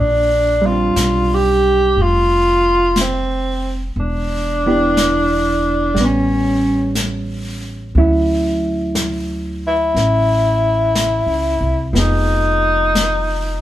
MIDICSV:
0, 0, Header, 1, 5, 480
1, 0, Start_track
1, 0, Tempo, 998336
1, 1907, Time_signature, 4, 2, 24, 8
1, 6544, End_track
2, 0, Start_track
2, 0, Title_t, "Tenor saxophone"
2, 0, Program_c, 0, 66
2, 0, Note_on_c, 0, 62, 79
2, 315, Note_on_c, 0, 65, 78
2, 323, Note_off_c, 0, 62, 0
2, 644, Note_on_c, 0, 67, 96
2, 651, Note_off_c, 0, 65, 0
2, 968, Note_on_c, 0, 65, 99
2, 976, Note_off_c, 0, 67, 0
2, 1448, Note_on_c, 0, 60, 74
2, 1455, Note_off_c, 0, 65, 0
2, 1837, Note_off_c, 0, 60, 0
2, 1922, Note_on_c, 0, 62, 92
2, 2911, Note_on_c, 0, 61, 74
2, 2918, Note_off_c, 0, 62, 0
2, 3368, Note_off_c, 0, 61, 0
2, 4649, Note_on_c, 0, 64, 88
2, 5732, Note_off_c, 0, 64, 0
2, 5767, Note_on_c, 0, 63, 90
2, 6544, Note_off_c, 0, 63, 0
2, 6544, End_track
3, 0, Start_track
3, 0, Title_t, "Hollow-body jazz guitar"
3, 0, Program_c, 1, 26
3, 296, Note_on_c, 1, 55, 40
3, 321, Note_on_c, 1, 60, 41
3, 345, Note_on_c, 1, 62, 48
3, 1898, Note_off_c, 1, 55, 0
3, 1911, Note_off_c, 1, 60, 0
3, 1923, Note_off_c, 1, 62, 0
3, 2243, Note_on_c, 1, 52, 42
3, 2246, Note_on_c, 1, 59, 47
3, 2249, Note_on_c, 1, 67, 48
3, 2250, Note_on_c, 1, 62, 42
3, 2856, Note_off_c, 1, 52, 0
3, 2858, Note_on_c, 1, 55, 44
3, 2870, Note_off_c, 1, 59, 0
3, 2872, Note_off_c, 1, 67, 0
3, 2873, Note_off_c, 1, 62, 0
3, 2886, Note_on_c, 1, 59, 49
3, 2907, Note_on_c, 1, 61, 53
3, 3821, Note_off_c, 1, 55, 0
3, 3832, Note_off_c, 1, 61, 0
3, 3835, Note_off_c, 1, 59, 0
3, 3835, Note_on_c, 1, 54, 47
3, 3837, Note_on_c, 1, 61, 47
3, 3837, Note_on_c, 1, 64, 54
3, 5735, Note_off_c, 1, 54, 0
3, 5737, Note_on_c, 1, 53, 36
3, 5742, Note_off_c, 1, 61, 0
3, 5744, Note_on_c, 1, 59, 42
3, 5750, Note_off_c, 1, 64, 0
3, 5753, Note_on_c, 1, 63, 42
3, 5759, Note_on_c, 1, 68, 49
3, 6544, Note_off_c, 1, 53, 0
3, 6544, Note_off_c, 1, 59, 0
3, 6544, Note_off_c, 1, 63, 0
3, 6544, Note_off_c, 1, 68, 0
3, 6544, End_track
4, 0, Start_track
4, 0, Title_t, "Upright bass"
4, 0, Program_c, 2, 32
4, 0, Note_on_c, 2, 34, 69
4, 446, Note_off_c, 2, 34, 0
4, 463, Note_on_c, 2, 35, 67
4, 926, Note_off_c, 2, 35, 0
4, 945, Note_on_c, 2, 29, 66
4, 1888, Note_off_c, 2, 29, 0
4, 1904, Note_on_c, 2, 28, 70
4, 2845, Note_off_c, 2, 28, 0
4, 2861, Note_on_c, 2, 33, 66
4, 3803, Note_off_c, 2, 33, 0
4, 3822, Note_on_c, 2, 38, 72
4, 4763, Note_off_c, 2, 38, 0
4, 4782, Note_on_c, 2, 33, 70
4, 5403, Note_off_c, 2, 33, 0
4, 5416, Note_on_c, 2, 37, 56
4, 5568, Note_off_c, 2, 37, 0
4, 5580, Note_on_c, 2, 36, 68
4, 5730, Note_off_c, 2, 36, 0
4, 5737, Note_on_c, 2, 29, 69
4, 6544, Note_off_c, 2, 29, 0
4, 6544, End_track
5, 0, Start_track
5, 0, Title_t, "Drums"
5, 463, Note_on_c, 9, 25, 31
5, 463, Note_on_c, 9, 38, 44
5, 463, Note_on_c, 9, 44, 54
5, 511, Note_off_c, 9, 38, 0
5, 511, Note_off_c, 9, 44, 0
5, 943, Note_off_c, 9, 25, 0
5, 943, Note_on_c, 9, 25, 36
5, 1423, Note_off_c, 9, 25, 0
5, 1423, Note_on_c, 9, 25, 33
5, 1423, Note_on_c, 9, 38, 38
5, 1423, Note_on_c, 9, 44, 55
5, 1471, Note_off_c, 9, 38, 0
5, 1471, Note_off_c, 9, 44, 0
5, 1910, Note_off_c, 9, 25, 0
5, 1910, Note_on_c, 9, 25, 40
5, 2390, Note_off_c, 9, 25, 0
5, 2390, Note_on_c, 9, 25, 33
5, 2390, Note_on_c, 9, 38, 42
5, 2390, Note_on_c, 9, 44, 47
5, 2438, Note_off_c, 9, 38, 0
5, 2438, Note_off_c, 9, 44, 0
5, 2867, Note_off_c, 9, 25, 0
5, 2867, Note_on_c, 9, 25, 36
5, 2867, Note_on_c, 9, 38, 29
5, 2915, Note_off_c, 9, 38, 0
5, 3343, Note_off_c, 9, 25, 0
5, 3343, Note_on_c, 9, 25, 37
5, 3343, Note_on_c, 9, 38, 39
5, 3343, Note_on_c, 9, 44, 45
5, 3391, Note_off_c, 9, 38, 0
5, 3391, Note_off_c, 9, 44, 0
5, 3824, Note_off_c, 9, 25, 0
5, 3824, Note_on_c, 9, 25, 37
5, 4304, Note_off_c, 9, 25, 0
5, 4304, Note_on_c, 9, 25, 34
5, 4304, Note_on_c, 9, 38, 43
5, 4304, Note_on_c, 9, 44, 51
5, 4352, Note_off_c, 9, 38, 0
5, 4352, Note_off_c, 9, 44, 0
5, 4790, Note_off_c, 9, 25, 0
5, 4790, Note_on_c, 9, 25, 35
5, 4790, Note_on_c, 9, 38, 26
5, 4839, Note_off_c, 9, 38, 0
5, 5266, Note_off_c, 9, 25, 0
5, 5266, Note_on_c, 9, 25, 36
5, 5266, Note_on_c, 9, 38, 43
5, 5266, Note_on_c, 9, 44, 53
5, 5314, Note_off_c, 9, 38, 0
5, 5314, Note_off_c, 9, 44, 0
5, 5747, Note_off_c, 9, 25, 0
5, 5747, Note_on_c, 9, 25, 39
5, 5747, Note_on_c, 9, 38, 29
5, 5795, Note_off_c, 9, 38, 0
5, 6227, Note_off_c, 9, 25, 0
5, 6227, Note_on_c, 9, 25, 36
5, 6227, Note_on_c, 9, 38, 44
5, 6227, Note_on_c, 9, 44, 50
5, 6275, Note_off_c, 9, 38, 0
5, 6275, Note_off_c, 9, 44, 0
5, 6544, Note_off_c, 9, 25, 0
5, 6544, End_track
0, 0, End_of_file